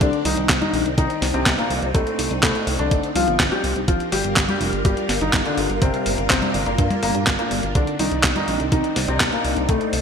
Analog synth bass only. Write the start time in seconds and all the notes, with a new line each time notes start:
0.01 C2
0.25 C2
0.37 C2
0.49 C2
0.73 A#1
0.86 C2
0.98 C2
1.22 C2
1.34 C2
1.46 C2
1.70 C2
1.82 C2
1.95 C2
2.19 C2
2.31 C2
2.43 C2
2.67 C2
2.79 C2
2.91 G1
3.15 C2
3.28 G1
3.40 G1
3.64 C2
3.76 C2
3.88 G1
4.12 G1
4.24 G1
4.37 G1
4.61 F1
4.73 G1
4.85 G1
5.09 G1
5.21 G1
5.33 G1
5.58 G1
5.70 G1
5.82 G1
6.06 G1
6.18 G1
6.30 G1
6.54 G1
6.66 G1
6.78 G2
7.03 G1
7.15 G2
7.27 G1
7.51 G1
7.63 G1
7.75 C2
8.00 C2
8.12 C2
8.24 C2
8.48 A#1
8.60 C2
8.72 C2
8.96 C2
9.08 C2
9.20 C2
9.45 C2
9.57 C2
9.69 C2
9.93 C2